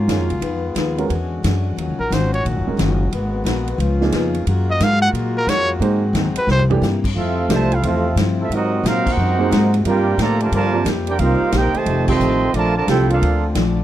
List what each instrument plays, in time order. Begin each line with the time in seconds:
Already playing: trombone section F#3 A#3 C#4 F4
0.08 upright bass F#2, grand piano D#3 G#3 C#4 F4, steel-string acoustic guitar F#3 C#4 F4 A#4, snare, hi-hat pedal, ride
0.19 upright bass F2
0.30 upright bass C#2, ride
0.40 upright bass F2, trombone section D#3 G#3 B3, steel-string acoustic guitar F3 D#4 G#4 B4, ride
0.75 upright bass D#2, steel-string acoustic guitar F3 D#4 G#4 B4, snare, hi-hat pedal, ride
0.98 grand piano G#3 C#4 F#4 A#4, ride
1.08 upright bass E2, trombone section D3 C#4 F#4, steel-string acoustic guitar E3 D4 G#4 C#5, ride
1.43 upright bass F#2, steel-string acoustic guitar E3 D4 G#4 C#5, snare, hi-hat pedal, ride
1.76 upright bass D#2, steel-string acoustic guitar D#3 F#3 C#4 F4, trombone section D#3 F#3 C#4 F#4, ride
1.88 upright bass C#2
1.99 upright bass A#1, trumpet A#4
2.10 upright bass G#1, steel-string acoustic guitar D#3 F#3 C#4 F4, trumpet C5, snare, hi-hat pedal, ride
2.34 trumpet C#5, ride
2.45 upright bass A#1, steel-string acoustic guitar D#3 F#3 C#4 F4, ride
2.56 upright bass F#1
2.67 upright bass D#1, grand piano G#3 C#4 F#4 A#4
2.77 upright bass F#1, steel-string acoustic guitar D#3 F#3 C#4 F4, snare, hi-hat pedal, ride
3.11 upright bass G#1, steel-string acoustic guitar G#3 B3 F#4 A#4, trombone section G#3 A#3 B3 F#4, ride
3.44 upright bass A#1, steel-string acoustic guitar G#3 B3 F#4 A#4, snare, hi-hat pedal, ride
3.67 ride
3.78 upright bass C#2, steel-string acoustic guitar C#3 F3 B3 D#4, trombone section D#3 C#4 F4, ride
4.01 grand piano F3 A#3 D#4 G#4, snare
4.12 upright bass F2, steel-string acoustic guitar C#3 F3 B3 D#4, snare, hi-hat pedal, ride
4.34 ride
4.47 upright bass F#2, steel-string acoustic guitar F#3 A#3 F4 G#4, trombone section G#3 A#3 F4 F#4, ride
4.70 trumpet D#5
4.80 upright bass G#2, steel-string acoustic guitar F#3 A#3 F4 G#4, trumpet F5, snare, hi-hat pedal, ride
5.02 trumpet F#5, ride
5.13 upright bass A#2, steel-string acoustic guitar F#3 A#3 F4, ride
5.17 steel-string acoustic guitar G#4
5.37 trumpet A#4
5.47 upright bass F2, steel-string acoustic guitar F#3 A#3 F4 G#4, trumpet C#5, snare, hi-hat pedal, ride
5.80 upright bass G#2, steel-string acoustic guitar G#2 F#3 C4, trombone section D#3 G#3 C4, grand piano A#3 D#4 G#4 C5, ride
5.84 steel-string acoustic guitar D#4
6.13 upright bass D#2, steel-string acoustic guitar G#2 F#3 C4 D#4, snare, hi-hat pedal, ride
6.35 trumpet B4, muted upright bass stroke, ride
6.47 upright bass C2, steel-string acoustic guitar C3 G3 A#3 E4, trombone section E3 A#3 G4, snare
6.51 trumpet C5
6.59 floor tom
6.70 grand piano E3 A3 D4 G4, floor tom
6.81 upright bass G2, steel-string acoustic guitar C3 G3 A#3 E4, snare, hi-hat pedal
7.04 kick, crash
7.14 upright bass F2, trombone section C3 A3 C4 F4, steel-string acoustic guitar F3 A3 C4, trumpet section C4 A4 E5 F5
7.19 steel-string acoustic guitar E4
7.49 upright bass C2, trombone section C3 E3 A3, steel-string acoustic guitar F3 A3 C4 E4, grand piano A3 D4 G4 C5, trumpet section F4 C5 E5 A5, snare, hi-hat pedal, ride
7.70 trombone section A3 C4 F4, trumpet section C4 E4 A4 F5, ride
7.82 upright bass E2, steel-string acoustic guitar F3 A3 C4 E4, trombone section A3 C4 F4, trumpet section C4 A4 E5 F5, ride
8.16 upright bass G2, steel-string acoustic guitar F3 A3 C4 E4, snare, hi-hat pedal, ride
8.39 trombone section A3 C4 E4, trumpet section C4 F4 A4 E5
8.50 upright bass G#2, steel-string acoustic guitar G#2 F#3 C4 F4, trombone section C3 F#3 C4 D#4 F#4, ride
8.54 trumpet section C4 F#4 A#4 D#5
8.83 steel-string acoustic guitar G#2 F#3 C4 F4, upright bass A#2, trombone section F#3 C4 F4, trumpet section D#4 A#4 C5 F5, snare, hi-hat pedal, ride
9.06 trombone section C4 D#4 F#4, trumpet section D#4 A#4 C5 F#5, kick, crash
9.17 upright bass F#2, steel-string acoustic guitar G#2 F#3 C4 F4
9.38 grand piano A#3 D#4 G#4 C5
9.51 steel-string acoustic guitar G#2 F#3 C4 F4, upright bass G#2, snare, hi-hat pedal, ride
9.74 ride
9.85 upright bass G2, steel-string acoustic guitar G3 A#3 F4 A4, trombone section G3 A#3 D4 G4, grand piano G3 C4 F4 A#4, trumpet section F4 A#4 D5 G5, ride
10.18 upright bass A2, trombone section D3 F3 A#3, steel-string acoustic guitar G3 A#3 F4, trumpet section F4 A4 D5 A#5, snare, hi-hat pedal, ride
10.22 steel-string acoustic guitar A4
10.40 trombone section D3 F3 A3, trumpet section F4 A#4 D5 A5, ride
10.52 upright bass G2, trombone section D3 F3 A#3, steel-string acoustic guitar G3 A#3 F4 A4, trumpet section F4 A#4 D5 A5, ride
10.73 grand piano G3 C4 F4 A#4
10.85 upright bass F2, steel-string acoustic guitar G3 A#3 F4 A4, snare, hi-hat pedal, ride
11.07 trombone section A#3 D4 G4, trumpet section F4 A#4 D5 G5, ride
11.17 upright bass C2, steel-string acoustic guitar C3 A#3, trombone section D#3 G3 A#3 C4 F4, grand piano G3 C4 F4 A#4, trumpet section D#4 A#4 C5 F5, ride
11.21 steel-string acoustic guitar D#4 G4
11.41 muted upright bass stroke
11.52 upright bass A#1, steel-string acoustic guitar C3 A#3 D#4 G4, trombone section A#3 D#4 G4, trumpet section D#4 A#4 C5 G5, snare, hi-hat pedal, ride
11.74 trombone section C3 D#3 A3, trumpet section G4 C5 D#5 A5, muted upright bass stroke, ride
11.85 upright bass F1, steel-string acoustic guitar F3 A3 D#4, trombone section G3 C4 F4, ride
11.89 steel-string acoustic guitar G4
12.07 grand piano G3 C4 F4 G4, trombone section C4, trumpet section A4 D#5 G5 C6, kick, crash
12.11 trombone section D#3 A3
12.20 upright bass A1, steel-string acoustic guitar F3 A3 D#4 G4, hi-hat pedal
12.52 upright bass A#1, steel-string acoustic guitar A#2 F3 A3, trombone section D3 F3 A3 D4, trumpet section F4 A#4 D5 A5, ride
12.57 steel-string acoustic guitar D4
12.77 trombone section D3 F3 A3, trumpet section F4 A#4 D5 A5
12.87 upright bass C2, steel-string acoustic guitar A#2 F3 A3 D4, grand piano G3 C4 F4 A4, trumpet section E4 A4 C5 G5, trombone section G4, snare, hi-hat pedal, ride
13.10 trombone section A#3 D4 F4, trumpet section D4 A4 A#4 F5, ride
13.22 upright bass D2, steel-string acoustic guitar A#2 F3 A3 D4, ride
13.55 upright bass A#1, steel-string acoustic guitar A#2 F3 A3 D4, snare, hi-hat pedal, ride